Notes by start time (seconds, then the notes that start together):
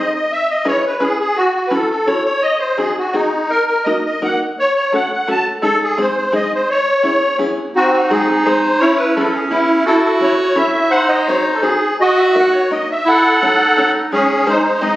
Already playing: C4 D#4 G#4 C5 D#5
0.15 D#5
0.32 E5
0.50 D#5
0.65 C#4 E4 G#4 B4 C#5
0.86 B4
1.00 C#4 E4 G#4 B4
1.20 G#4
1.36 F#4
1.55 F#4
1.67 C#4 B4
1.71 E4 F#4 A4
1.90 A4
2.07 C#4 E4 F#4 A4 C#5
2.25 C#5
2.42 D#5
2.60 C5
2.78 C4 D#4 F#4 G#4
2.98 F#4
3.14 C4 D#4 F#4 G#4
3.50 A#4
3.67 A#4
3.84 A#3 D#4 F#4 A#4 D#5
4.05 D#5
4.22 A#3 D#4 F#4 A#4 F#5
4.59 C#5
4.75 C#5
4.92 A3 C#4 F#4 A4 F#5
5.13 F#5
5.28 A3 C#4 F#4 A4 A5
5.62 G#3 C#4 D#4 G#4 A4
5.84 G#4
5.97 G#3 C4 D#4 G#4 C5
6.17 C5
6.32 G#3 C4 D#4 G#4 D#5
6.55 C5
6.70 C#5
7.03 B3 C#4 E4 G#4
7.38 B3 C#4 E4 G#4
7.76 C4 D#4 F#4
7.92 F#4
8.10 G#3 C4 D#4 G#4 C5
8.30 G#4
8.45 G#3 C4 D#4 G#4 C5
8.62 C5
8.80 C#4 E4 C#5
8.97 B4
9.15 B3 C#4 E4 G#4 A4 B4
9.34 G#4
9.50 B3 C#4 E4 G#4 B4
9.86 E4 F#4 A4
10.04 A4
10.20 C#4 E4 F#4 A4 C#5
10.40 C#5
10.56 C#4 E4 F#4 A4 C#5 E5
10.73 E5
10.91 D#4 C5 F#5
11.09 D#5
11.27 C4 D#4 F#4 G#4 C5 C#5
11.42 C5
11.53 A4
11.62 C4 D#4 F#4 G#4 C5
12.01 F#4 D#5
12.17 D#5 E5
12.29 E5
12.35 A#3 D#4 F#4 A#4 D#5 F#5
12.52 C#5
12.71 A#3 D#4 F#4 A#4 D#5
12.91 E5
13.06 E4 A4 F#5
13.42 A3 C#4 D#4 F#4 A4 C#5
13.77 A3 C#4 F#4 A4 C#5
14.12 G#3 C#4 D#4 G#4 C#5
14.30 G#4
14.46 G#3 C4 D#4 G#4 C5
14.65 C5
14.81 G#3 C4 D#4 G#4 C5 D#5